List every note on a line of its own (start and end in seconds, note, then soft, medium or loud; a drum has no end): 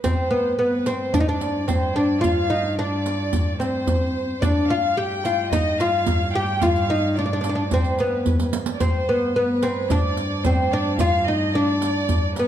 0.04 4.43 G2 medium
0.04 0.33 C4 medium
0.04 0.55 C5 medium
0.04 riq medium
0.04 tombak dum medium
0.31 0.57 B3 medium
0.59 0.87 B3 medium
0.59 0.87 B4 medium
0.86 1.13 C4 medium
0.86 1.14 C5 medium
0.86 riq medium
0.86 tombak tek medium
1.14 1.20 D4 medium
1.14 1.25 D5 medium
1.14 riq medium
1.14 tombak dum medium
1.20 1.28 D#4 medium
1.26 1.67 D4 medium
1.26 1.65 D5 medium
1.26 tombak ka soft
1.41 riq soft
1.41 tombak tek medium
1.68 1.95 C4 medium
1.68 1.96 C5 medium
1.68 riq medium
1.68 tombak dum medium
1.84 tombak ka soft
1.95 2.21 D4 medium
1.95 2.23 D5 medium
2.21 2.49 F4 medium
2.21 2.78 F5 medium
2.21 riq medium
2.21 tombak dum medium
2.50 2.78 D#4 medium
2.78 3.63 D4 medium
2.78 3.56 D5 medium
3.06 riq medium
3.06 tombak tek medium
3.33 riq medium
3.33 tombak dum medium
3.46 tombak ka soft
3.59 4.42 C4 medium
3.59 4.43 C5 medium
3.59 riq soft
3.59 tombak tek medium
3.87 riq medium
3.87 tombak dum medium
4.02 tombak ka soft
4.42 8.79 G2 medium
4.42 4.71 D4 loud
4.42 4.70 D5 medium
4.42 riq medium
4.42 tombak dum loud
4.69 4.97 F4 medium
4.69 4.97 F5 medium
4.96 5.25 G4 medium
4.96 5.52 G5 medium
5.24 5.52 F4 medium
5.24 riq medium
5.24 tombak tek medium
5.51 5.80 D#4 loud
5.51 5.77 D#5 medium
5.51 riq medium
5.51 tombak dum medium
5.80 6.31 F4 medium
5.80 6.34 F5 medium
5.80 riq soft
5.80 tombak tek medium
6.06 riq medium
6.06 tombak dum medium
6.20 tombak ka soft
6.34 6.62 G4 medium
6.34 6.62 G5 medium
6.61 6.88 F4 medium
6.61 7.16 F5 medium
6.61 riq medium
6.61 tombak dum medium
6.76 riq soft
6.76 tombak ka soft
6.90 7.18 D#4 medium
7.15 7.25 D4 medium
7.15 7.71 D5 medium
7.15 riq soft
7.26 7.32 D4 medium
7.33 7.40 D4 medium
7.41 7.48 D4 medium
7.41 riq medium
7.41 tombak tek medium
7.49 7.54 D4 medium
7.55 7.62 D4 medium
7.70 8.01 C4 medium
7.70 7.98 C5 medium
7.70 riq medium
7.70 tombak dum loud
7.84 riq soft
7.84 tombak ka soft
7.98 8.50 B3 medium
7.98 8.49 B4 medium
7.98 riq soft
7.98 tombak tek medium
8.26 riq soft
8.26 tombak dum medium
8.40 riq medium
8.40 tombak ka soft
8.53 riq medium
8.66 riq medium
8.73 8.81 D5 soft
8.80 12.48 G2 medium
8.80 9.09 C4 medium
8.80 9.35 C5 medium
8.80 riq medium
8.80 tombak dum loud
9.09 9.35 B3 medium
9.35 9.64 B3 medium
9.35 9.90 B4 medium
9.63 9.91 C4 medium
9.63 riq medium
9.63 tombak tek medium
9.90 10.46 D4 medium
9.90 10.45 D5 medium
9.90 riq medium
9.90 tombak dum loud
10.05 tombak ka soft
10.17 riq soft
10.43 10.71 C4 medium
10.43 10.72 C5 medium
10.43 riq medium
10.43 tombak dum loud
10.58 tombak ka soft
10.72 11.00 D4 medium
10.72 10.99 D5 medium
10.99 11.28 F4 loud
10.99 11.25 F5 medium
10.99 riq medium
10.99 tombak dum loud
11.27 11.55 D#4 medium
11.27 11.54 D#5 medium
11.54 12.39 D4 loud
11.54 12.37 D5 medium
11.82 riq medium
11.82 tombak tek medium
12.09 riq medium
12.09 tombak dum loud
12.23 tombak ka soft
12.35 12.48 B3 medium
12.35 12.48 B4 medium
12.35 riq soft
12.35 tombak tek medium